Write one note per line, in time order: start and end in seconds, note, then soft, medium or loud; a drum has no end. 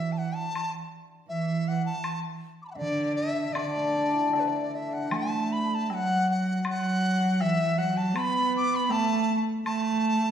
0.00 0.70 E3 medium
0.00 0.14 E5 medium
0.12 0.20 A5 medium
0.18 0.37 F#5 medium
0.35 0.73 A5 medium
0.55 high woodblock medium
1.28 2.18 E3 medium
1.28 1.70 E5 medium
1.68 1.85 F#5 medium
1.86 2.20 A5 medium
2.04 high woodblock medium
2.62 2.66 B5 soft
2.62 2.64 D6 soft
2.67 2.74 F#5 medium
2.67 2.70 A5 soft
2.75 3.50 D3 medium
2.75 3.13 D5 medium
2.75 2.77 E5 medium
3.16 3.54 E5 medium
3.53 4.28 D3 medium
3.53 5.90 D3 medium
3.53 4.32 D5 medium
3.53 high woodblock medium
3.75 5.32 A3 soft
3.97 5.53 D4 soft
4.14 5.71 E4 soft
4.33 5.13 D3 medium
4.33 5.91 A4 soft
4.33 4.41 D5 medium
4.33 low woodblock soft
4.40 4.50 B4 medium
4.48 4.77 D5 medium
4.75 4.95 E5 medium
4.93 5.17 F#5 medium
5.11 5.93 A3 medium
5.11 high woodblock medium
5.16 5.54 A5 medium
5.52 5.76 B5 medium
5.75 5.85 A5 medium
5.85 5.96 A5 medium
5.90 6.65 F#3 medium
5.90 low woodblock soft
5.94 6.30 F#5 medium
6.31 6.65 F#5 medium
6.65 7.42 F#3 medium
6.65 high woodblock medium
6.70 7.43 F#5 loud
7.40 7.78 E3 medium
7.40 7.80 E5 loud
7.40 low woodblock soft
7.77 8.16 F#3 medium
7.77 7.99 F#5 medium
7.97 8.19 A5 medium
8.15 8.91 B3 medium
8.15 8.55 B5 loud
8.15 high woodblock medium
8.57 8.77 D6 loud
8.76 8.93 B5 loud
8.89 9.40 A3 loud
8.89 9.40 A5 loud
8.89 low woodblock soft
9.66 10.31 A3 medium
9.66 10.31 A5 loud
9.66 high woodblock medium